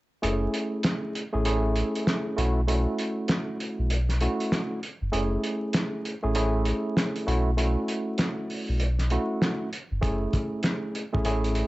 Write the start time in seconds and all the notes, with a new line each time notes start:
0.22 F#1 A3 C#4 E4 G#4, closed hi-hat
0.54 closed hi-hat
0.83 snare, closed hi-hat
1.15 closed hi-hat
1.33 A1 A3 C#4 E4 G#4
1.45 A3 C#4 E4 G#4, closed hi-hat
1.76 closed hi-hat
1.95 closed hi-hat
2.07 snare, closed hi-hat
2.37 B1 A3 C#4 E4 F#4, closed hi-hat
2.68 A3 C#4 E4 F#4, closed hi-hat
2.99 closed hi-hat
3.28 snare, closed hi-hat
3.60 closed hi-hat
3.79 B1
3.90 closed hi-hat
4.09 snare, closed hi-hat
4.21 A3 C#4 E4 F#4, closed hi-hat
4.40 closed hi-hat
4.52 snare, closed hi-hat
4.83 closed hi-hat
5.01 G1
5.12 F#1 A3 C#4 E4 G#4, closed hi-hat
5.44 closed hi-hat
5.73 snare, closed hi-hat
6.05 closed hi-hat
6.23 A1 A3 C#4 E4 G#4
6.35 A3 C#4 E4 G#4, closed hi-hat
6.65 closed hi-hat
6.97 snare, closed hi-hat
7.16 closed hi-hat
7.27 B1 A3 C#4 E4 F#4, closed hi-hat
7.57 A3 C#4 E4 F#4, closed hi-hat
7.88 closed hi-hat
8.18 snare, closed hi-hat
8.50 open hi-hat
8.69 B1
8.80 closed hi-hat
8.99 snare, closed hi-hat
9.10 A3 C#4 E4 F#4, closed hi-hat
9.42 snare, closed hi-hat
9.73 closed hi-hat
9.91 G1
10.01 F#1 A3 C#4 E4 G#4, kick, closed hi-hat
10.33 kick, closed hi-hat
10.63 snare, closed hi-hat
10.95 closed hi-hat
11.12 A1 A3 C#4 E4 G#4, kick
11.25 A3 C#4 E4 G#4, closed hi-hat
11.44 closed hi-hat
11.55 closed hi-hat